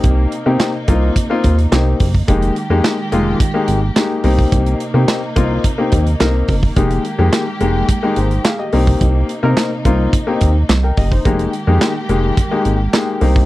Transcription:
<<
  \new Staff \with { instrumentName = "Grand piano" } { \time 4/4 \key f \minor \tempo 4 = 107 << { r1 | r1 | r1 | r2 r8 <ees' c''>8 <aes' f''>16 <g' ees''>8 r16 |
r2. r16 <bes' g''>16 <g' ees''>16 <ees' c''>16~ | <ees' c''>16 r2. r8. | } \\ { <bes c' ees' g'>8 r16 <bes c' ees' g'>8 r16 <bes c' ees' f'>8 r16 <bes c' ees' f'>8 r16 <bes c' ees' g'>8 r8 | <aes bes ees' g'>8 r16 <aes bes ees' g'>8 r16 <aes bes ees' f'>8 r16 <aes bes ees' g'>8 r16 <aes bes ees' g'>8 <bes c' ees' g'>8~ | <bes c' ees' g'>8 r16 <bes c' ees' g'>8 r16 <bes c' ees' f'>8 r16 <bes c' ees' g'>8 r16 <bes c' ees' bes'>8 r8 | <aes bes ees' g'>8 r16 <aes bes ees' g'>8 r16 <aes bes ees' g'>8 r16 <aes bes ees' g'>8 r8. <bes c' ees' g'>8~ |
<bes c' ees' g'>8 r16 <bes c' ees' bes'>8 r16 <bes c' ees' f'>8 r16 <bes c' ees' g'>8 r4 r16 | <aes bes ees' g'>8 r16 <aes bes ees' g'>8 r16 <aes bes ees' g'>8 r16 <aes bes ees' g'>8 r16 <aes bes ees' g'>8 <bes c' ees' g'>8 | } >> }
  \new Staff \with { instrumentName = "String section" } { \time 4/4 \key f \minor << { <c ees'>1 | <ees aes g'>2.~ <ees aes g'>8 <c ees'>8~ | <c ees'>1 | <ees aes g'>2.~ <ees aes g'>8 <c ees'>8~ |
<c ees'>1 | <ees aes g'>2.~ <ees aes g'>8 <c ees'>8 | } \\ { bes1 | bes1~ | bes1~ | bes1~ |
bes1 | bes1 | } >> }
  \new Staff \with { instrumentName = "Analog synth bass" } { \clef bass \time 4/4 \key f \minor c,8 r16 c16 r8 c,8 r8 ees,8 c,8 ges,,8 | f,,8 r16 f,16 r8 f,,8 r8 aes,,8 r8 c,8 | c,8 r16 c16 r8 c,8 r8 ees,8 c,8 ges,,8 | f,,8 r16 f,16 r8 f,,8 r8 aes,,8 r8 c,8 |
c,8 r16 c16 r8 c,8 r8 ees,8 c,8 ges,,8 | f,,8 r16 f,16 r8 f,,8 r8 aes,,8 r8 c,8 | }
  \new DrumStaff \with { instrumentName = "Drums" } \drummode { \time 4/4 <hh bd>8 hh8 <hc hh sn>8 <hh bd>8 <hh bd>8 <hh bd>16 hh16 <hc hh sn>8 <hho bd>16 bd16 | <hh bd>16 hh16 hh8 <hc hh sn>8 hh8 <hh bd>8 hh8 <hc hh sn>8 hho16 bd16 | <hh bd>16 hh16 hh8 <hc hh sn>8 <hh bd>8 <hh bd>8 <hh bd>16 hh16 <hc hh sn>8 <hho bd>16 bd16 | <hh bd>16 hh16 hh8 <hc hh sn>8 hh8 <hh bd>8 hh16 hh16 <hc hh sn>8 hho16 bd16 |
<hh bd>8 hh8 <hc hh sn>8 <hh bd>8 <hh bd>8 <hh bd>8 <hc hh sn>8 <hho bd>16 bd16 | <hh bd>16 hh16 hh8 <hc hh sn>8 hh8 <hh bd>8 hh8 <hc hh sn>8 hho16 bd16 | }
>>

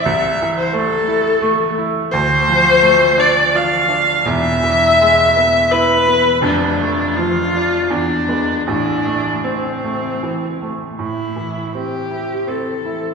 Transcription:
<<
  \new Staff \with { instrumentName = "Viola" } { \time 3/4 \key a \minor \tempo 4 = 83 e''8. c''16 a'4. r8 | c''4. d''8 f''4 | e''2 b'4 | d'4 f'4 d'4 |
d'4 c'4. r8 | e'4 g'4 a'4 | }
  \new Staff \with { instrumentName = "Grand piano" } { \time 3/4 \key a \minor c,8 e8 a8 e'8 a8 e'8 | d,8 f8 a8 d'8 f'8 d'8 | <e,, e,>8 e8 gis8 b8 e'8 b8 | <f,, f,>8 a8 f8 d'8 e,8 <gis b>8 |
<a,, a,>8 a8 c'8 a8 e8 a8 | a,8 e8 c'8 e'8 c'8 e'8 | }
>>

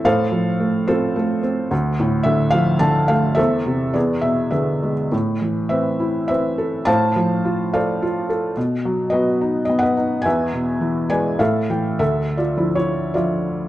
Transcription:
<<
  \new Staff \with { instrumentName = "Felt piano" } { \time 3/4 \key a \minor \tempo 4 = 106 << { f''4. c''4 r8 | r4 e''8 f''8 a''8 f''8 | e''4 d''8 e''8 e''8. r16 | r4 e''4 e''4 |
a''4. f''4 r8 | r4 dis''4 dis''16 fis''8. | gis''4. gis''8 f''4 | \key d \minor \tuplet 3/2 { e''4 d''8~ d''8 cis''4 } d''4 | } \\ { <a' c''>4. <f' a'>4. | r2. | <a' c''>4 <gis' b'>4 <gis' b'>4 | r4 <b' c''>4 <b' c''>4 |
<c'' f''>4. <c'' d''>4. | r4 <fis' b'>4~ <fis' b'>16 <b' dis''>8. | <b' e''>4. b'8 a'4 | \tuplet 3/2 { a'4 f'8~ f'8 e'4 } f'4 | } >> }
  \new Staff \with { instrumentName = "Felt piano" } { \clef bass \time 3/4 \key a \minor a,8 f8 a8 c'8 a8 c'8 | d,8 a,8 d8 f8 d8 a8 | e,8 c8 e,8 b,8 d8 gis8 | a,8 e8 c'8 e'8 c'8 a'8 |
a,8 f8 f'8 a'8 f'8 a'8 | b,8 fis8 b8 dis'8 b8 dis'8 | e,8 b,8 e8 <gis d''>8 <a, e''>8 <e g''>8 | \key d \minor d,4 <f d' e'>4 <f d' e''>4 | }
>>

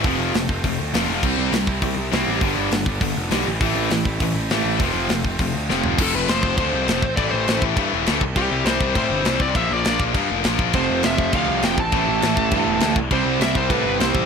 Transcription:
<<
  \new Staff \with { instrumentName = "Lead electric guitar" } { \time 4/4 \key f \lydian \tempo 4 = 202 r1 | r1 | r1 | r1 |
r1 | a'8 b'8 c''8 c''8 c''2 | d''8 c''4 r2 r8 | g'4 c''4 c''4. d''8 |
e''8 d''4 r2 r8 | c''4 e''4 f''4 g''8 a''8~ | a''2.~ a''8 r8 | c''4 e''8 c''8 b'4 c''4 | }
  \new Staff \with { instrumentName = "Distorted electric guitar" } { \time 4/4 \key f \lydian <f a c' f'>4. <f a c' f'>4. <f a c' f'>4 | <c g c' e'>4. <c g c' e'>4. <c g c' e'>4 | <g, d g b d'>4. <g, d g b d'>4. <g, d g b d'>8 <a, e a c' e'>8~ | <a, e a c' e'>4 <a, e a c' e'>4. <a, e a c' e'>4 r8 |
<f a c' f'>4. <f a c' f'>4. <f a c' f'>4 | <f a c' f'>4 <f a c' f'>4 <f a c' f'>4 <f a c' f'>8 r8 | <a, e a c' e'>4 <a, e a c' e'>4 <a, e a c' e'>4 <a, e a c' e'>8 r8 | <c e g c' e'>4 <c e g c' e'>4 <c e g c' e'>4 <c e g c' e'>4 |
<bes, f bes d' f'>4 <bes, f bes d' f'>4 <bes, f bes d' f'>4 <bes, f bes d' f'>4 | <f a c' f'>4 <f a c' f'>4 <f a c' f'>4 <f a c' f'>8 r8 | <a, e a c' e'>4 <a, e a c' e'>4 <a, e a c' e'>4 <a, e a c' e'>8 r8 | <c g c' e'>4 <c g c' e'>4 <c g c' e'>4 <c g c' e'>4 | }
  \new Staff \with { instrumentName = "Distorted electric guitar" } { \clef bass \time 4/4 \key f \lydian <f, c f>4 <f, c>8 r8 <f, c>8 r8 <f, c f>4 | <c g c'>4 <c g>8 r8 <c g>8 r8 <c g c'>4 | <g, d g>4 <g, d>8 r8 <g, d>8 r8 <g, d g>8 r8 | <a, e a>4 <a, e>8 r8 <a, e>8 r8 <a, e a>4 |
<f, c f>4 <f, c>8 r8 <f, c>8 r8 <f, c f>4 | <f, c f>4 <f, c f>4 <f, c f>4 <f, c f>8 r8 | <a, e a>4 <a, e a>4 <a, e a>4 <a, e a>8 r8 | <c g c'>4 <c g c'>4 <c g c'>4 <c g c'>4 |
<bes, f bes>4 <bes, f bes>4 <bes, f bes>4 <bes, f bes>4 | <f, c f>4 <f, c f>4 <f, c f>4 <f, c f>8 r8 | <a, e a>4 <a, e a>4 <a, e a>4 <a, e a>8 r8 | <c g c'>4 <c g c'>4 <c g c'>4 <c g c'>4 | }
  \new Staff \with { instrumentName = "Overdriven electric guitar" } { \clef bass \time 4/4 \key f \lydian <f, c f>4 <f, c>8 r8 <f, c>8 r8 <f, c f>4 | <c g c'>4 <c g>8 r8 <c g>8 r8 <c g c'>4 | <g, d g>4 <g, d>8 r8 <g, d>8 r8 <g, d g>8 r8 | <a, e a>4 <a, e>8 r8 <a, e>8 r8 <a, e a>4 |
<f, c f>4 <f, c>8 r8 <f, c>8 r8 <f, c f>4 | r1 | r1 | r1 |
r1 | <f, c f>4 <f, c f>4 <f, c f>4 <f, c f>8 r8 | <a, e a>4 <a, e a>4 <a, e a>4 <a, e a>8 r8 | <c g c'>4 <c g c'>4 <c g c'>4 <c g c'>4 | }
  \new Staff \with { instrumentName = "Picked electric bass" } { \clef bass \time 4/4 \key f \lydian f,,8 f,,8 f,,8 f,,8 f,,8 d,8 f,,8 f,,8 | c,8 c,8 c,8 c,8 c,8 c,8 c,8 a,,8 | g,,8 g,,8 g,,8 g,,8 g,,8 f,,8 b,,8 a,,8 | a,,8 a,,8 a,,8 a,,8 a,,8 a,,8 a,,8 a,,8 |
f,,8 f,,8 f,,8 f,,8 f,,8 d,8 f,,8 f,,8 | f,,8 f,,8 f,,8 f,,8 d,8 c,8 f,,8 a,,8 | a,,8 a,,8 a,,8 a,,8 g,8 e,,8 d,8 c,8 | c,8 c,8 c,8 c,8 a,8 g,,8 c,8 c,8 |
bes,,8 bes,,8 bes,,8 bes,,8 g,8 f,,8 bes,,8 bes,,8 | f,,8 f,,8 f,,8 f,,8 d,8 c,8 f,,8 a,,8 | a,,8 a,,8 a,,8 a,,8 g,8 e,,8 d,8 c,8 | c,8 c,8 c,8 c,8 a,8 g,,8 c,8 a,,8 | }
  \new DrumStaff \with { instrumentName = "Drums" } \drummode { \time 4/4 <hho bd>4 <hho sn>8 bd8 <hho bd>4 <hho sn>4 | <cymc bd>4 <hho sn>8 bd8 <hho bd>4 <hho sn>4 | <hho bd>4 <hho sn>8 bd8 <hho bd>4 <hho sn>4 | <hho bd>4 <hho sn>8 bd8 <hho bd>4 <hho sn>4 |
<hho bd>4 <hho sn>8 bd8 <hho bd>4 sn8 tomfh8 | <cymc bd>4 <cymc sn>8 bd8 <cymc bd>4 <cymc sn>8 bd8 | <cymc bd>4 <cymc sn>8 bd8 <cymc bd>4 <cymc sn>8 bd8 | <cymc bd>4 <cymc sn>8 bd8 <cymc bd>4 <cymc sn>8 bd8 |
<cymc bd>4 <cymc sn>8 bd8 <cymc bd>4 <cymc sn>8 bd8 | <cymc bd>4 <cymc sn>8 bd8 <cymc bd>4 <cymc sn>8 bd8 | <cymc bd>4 <cymc sn>8 bd8 <cymc bd>4 <cymc sn>8 bd8 | <cymc bd>4 <cymc sn>8 bd8 <cymc bd>4 <cymc sn>8 bd8 | }
>>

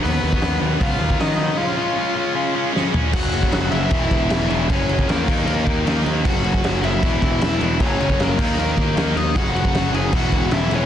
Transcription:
<<
  \new Staff \with { instrumentName = "Overdriven electric guitar" } { \time 4/4 \key cis \mixolydian \tempo 4 = 154 <b b'>4. r8 <eis' eis''>4 <dis' dis''>4 | <eis' eis''>2. r4 | \key fis \mixolydian <fis' fis''>4. <e' e''>2~ <e' e''>8 | <cis' cis''>4 <ais ais'>4 <ais ais'>4. r8 |
<fis' fis''>4. <e' e''>2~ <e' e''>8 | <cis' cis''>4 <ais ais'>4 <ais ais'>4. <dis' dis''>8 | <fis' fis''>8 <fis' fis''>4 <gis' gis''>8 <fis' fis''>4 <e' e''>8 <cis' cis''>8 | }
  \new Staff \with { instrumentName = "Distorted electric guitar" } { \clef bass \time 4/4 \key cis \mixolydian <b, fis b>8 <b, fis b>8 <b, fis b>8 <b, fis b>8 <b, fis b>8 <b, fis b>8 <b, fis b>8 <b, fis b>8 | <cis gis cis'>8 <cis gis cis'>8 <cis gis cis'>8 <cis gis cis'>8 <cis gis cis'>8 <cis gis cis'>8 <cis gis cis'>8 <cis gis cis'>8 | \key fis \mixolydian <fis, cis fis>4. <fis, cis fis>8 <e, b, e>4. <e, b, e>8 | <fis, cis fis>4. <dis ais dis'>4. <dis ais dis'>4 |
<fis, cis fis>4. <fis, cis fis>8 <e, b, e>4. <e, b, e>8 | <fis, cis fis>4. <dis ais dis'>4. <dis ais dis'>4 | <fis, cis fis>4. <fis, cis fis>8 <e, b, e>4. <e, b, e>8 | }
  \new Staff \with { instrumentName = "Picked electric bass" } { \clef bass \time 4/4 \key cis \mixolydian dis,8 dis,8 dis,8 dis,8 cis,8 dis,8 dis4 | r1 | \key fis \mixolydian fis,,8 fis,,8 fis,,8 fis,,8 e,,8 e,,8 e,,8 e,,8 | fis,,8 fis,,8 e,8 dis,8 dis,8 dis,8 dis,8 dis,8 |
fis,,8 fis,,8 fis,,8 fis,,8 e,,8 e,,8 e,,8 e,,8 | fis,,8 fis,,8 fis,,8 dis,8 dis,8 dis,8 dis,8 dis,8 | fis,,8 fis,,8 fis,,8 fis,,8 e,,8 e,,8 e,,8 e,,8 | }
  \new DrumStaff \with { instrumentName = "Drums" } \drummode { \time 4/4 hho8. bd16 <hho sn>4 <hho bd>8. bd16 <hho sn>4 | r4 r4 r4 sn8 tomfh8 | <cymc bd>8 cymc16 bd16 <cymc sn>8 cymc8 <cymc bd>8 <cymc bd>8 <cymc sn>8 cymc8 | <cymc bd>8 cymc16 bd16 <cymc sn>8 <cymc bd>8 cymc8 <cymc bd>8 <cymc sn>8 cymc8 |
<cymc bd>8 cymc16 bd16 <cymc sn>8 cymc8 <cymc bd>8 <cymc bd>8 <cymc sn>8 cymc8 | <cymc bd>8 cymc16 bd16 <cymc sn>8 <cymc bd>8 cymc8 <cymc bd>8 <cymc sn>8 cymc8 | <cymc bd>8 cymc16 bd16 <cymc sn>8 cymc8 <cymc bd>8 <cymc bd>8 <cymc sn>8 cymc8 | }
>>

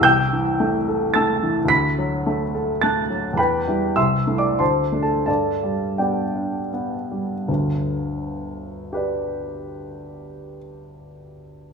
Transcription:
<<
  \new Staff \with { instrumentName = "Grand piano" } { \time 3/4 \key g \major \tempo 4 = 85 <g'' e''' g'''>2 <a'' e''' a'''>4 | <b'' b'''>2 <a'' fis''' a'''>8 r8 | <b' g'' b''>4 \tuplet 3/2 { <e'' c''' e'''>4 <d'' d'''>8 <c'' a'' c'''>4 <a' a''>8 } | <a' d'' a''>4 <g' d'' g''>4 r4 |
r2 <g' b' d''>4~ | <g' b' d''>2. | }
  \new Staff \with { instrumentName = "Grand piano" } { \clef bass \time 3/4 \key g \major c,8 e8 a8 a'8 a8 e8 | d,8 fis8 a8 a'8 a8 fis8 | e,8 <g e'>8 c,8 <a e'>8 d,8 <a d'>8 | g,8 g8 b8 d'8 b8 g8 |
<g,, d,>2.~ | <g,, d,>2. | }
>>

